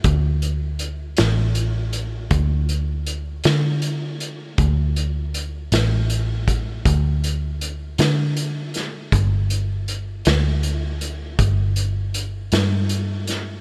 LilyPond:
<<
  \new Staff \with { instrumentName = "Picked electric bass" } { \clef bass \time 12/8 \key g \major \tempo 4. = 53 d,4. a,,4. d,4. d4. | d,4. a,,4. d,4. d4. | g,,4. d,4. g,,4. g,4. | }
  \new DrumStaff \with { instrumentName = "Drums" } \drummode { \time 12/8 <hh bd>8 hh8 hh8 <hh sn>8 hh8 hh8 <hh bd>8 hh8 hh8 <hh sn>8 hh8 hh8 | <hh bd>8 hh8 hh8 <hh sn>8 hh8 <hh bd>8 <hh bd>8 hh8 hh8 <hh sn>8 hh8 <hh sn>8 | <hh bd>8 hh8 hh8 <hh sn>8 hh8 hh8 <hh bd>8 hh8 hh8 <hh sn>8 hh8 <hh sn>8 | }
>>